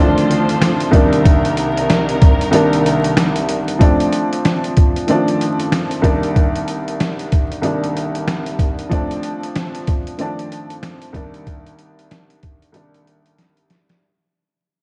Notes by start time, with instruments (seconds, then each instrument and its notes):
Already playing: string section D2 D3 F4 C5, upright piano D#3 F3 A3
0.00 upright piano F3 C4 D4
0.18 closed hi-hat
0.31 closed hi-hat
0.49 closed hi-hat
0.62 snare, closed hi-hat
0.80 closed hi-hat
0.91 upright piano C2 D#3 G3 A#3 D4, string section C2 C3 D#3 A#4, kick, closed hi-hat
1.13 closed hi-hat
1.25 kick, closed hi-hat
1.45 closed hi-hat
1.57 closed hi-hat
1.77 closed hi-hat
1.90 snare, closed hi-hat
2.09 closed hi-hat
2.22 kick, closed hi-hat
2.41 closed hi-hat
2.51 upright piano C2 D#3 G3 A#3 D4, closed hi-hat
2.73 closed hi-hat
2.86 closed hi-hat
3.04 closed hi-hat
3.17 snare, closed hi-hat
3.36 closed hi-hat
3.49 closed hi-hat
3.68 closed hi-hat
3.79 upright piano F3 A3 C4 D4, kick, closed hi-hat
4.00 closed hi-hat
4.12 closed hi-hat
4.33 closed hi-hat
4.45 snare, closed hi-hat
4.64 closed hi-hat
4.77 kick, closed hi-hat
4.96 closed hi-hat
5.07 upright piano D#3 A3 C4 D4, closed hi-hat
5.14 upright piano F3
5.28 closed hi-hat
5.41 closed hi-hat
5.60 closed hi-hat
5.72 snare, closed hi-hat
5.91 closed hi-hat
6.02 upright piano C2 D#3 G3 A#3 D4, kick, closed hi-hat
6.23 closed hi-hat
6.36 kick, closed hi-hat
6.56 closed hi-hat
6.68 closed hi-hat
6.88 closed hi-hat
7.00 snare, closed hi-hat
7.19 closed hi-hat
7.32 kick, closed hi-hat
7.52 closed hi-hat
7.62 upright piano C2 D#3 G3 A#3 D4, closed hi-hat
7.84 closed hi-hat
7.97 closed hi-hat
8.15 closed hi-hat
8.28 snare, closed hi-hat
8.46 closed hi-hat
8.59 kick, closed hi-hat
8.79 closed hi-hat
8.89 upright piano F3 A3 C4 D4, kick, closed hi-hat
9.11 closed hi-hat
9.23 closed hi-hat
9.43 closed hi-hat
9.55 snare, closed hi-hat
9.75 closed hi-hat
9.87 kick, closed hi-hat
10.07 closed hi-hat
10.17 upright piano D#3 A3 C4 D4, closed hi-hat
10.24 upright piano F3
10.39 closed hi-hat
10.52 closed hi-hat
10.70 closed hi-hat
10.83 snare, closed hi-hat
11.02 closed hi-hat
11.13 upright piano C2 D#3 G3 A#3 D4, kick, closed hi-hat
11.34 closed hi-hat
11.47 kick, closed hi-hat
11.66 closed hi-hat
11.79 closed hi-hat
11.99 closed hi-hat
12.11 snare, closed hi-hat
12.30 closed hi-hat
12.43 kick, closed hi-hat
12.62 closed hi-hat
12.72 upright piano C2 D#3 G3 A#3 D4, closed hi-hat
12.94 closed hi-hat
13.07 closed hi-hat
13.26 closed hi-hat
13.38 snare, closed hi-hat
13.57 closed hi-hat
13.70 snare, closed hi-hat
13.89 snare, closed hi-hat